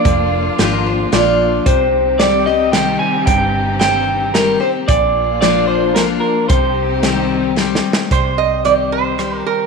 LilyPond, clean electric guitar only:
\new Staff \with { instrumentName = "Clean electric guitar" } { \time 3/4 \key c \minor \tempo 4 = 112 d''4. r4. | c''4 d''8 ees''8 g''8 aes''8 | g''4 g''4 bes'8 c''8 | d''4 d''8 c''8 bes'8 bes'8 |
c''2 r4 | r2. | }